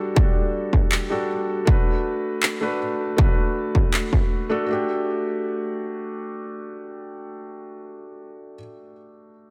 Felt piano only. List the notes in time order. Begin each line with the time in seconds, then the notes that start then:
Already playing: G3 D4 F#4 A4
0.14 G3 D4 F#4
0.19 A4
1.10 G3 D4 F#4 A4
1.65 A3 D4 F#4
1.69 B4
2.61 A3 D4 F#4 B4
3.16 A3 D4 F#4
3.20 B4
4.49 A3 D4 F#4 A4
4.66 A3 F#4
4.70 D4 G4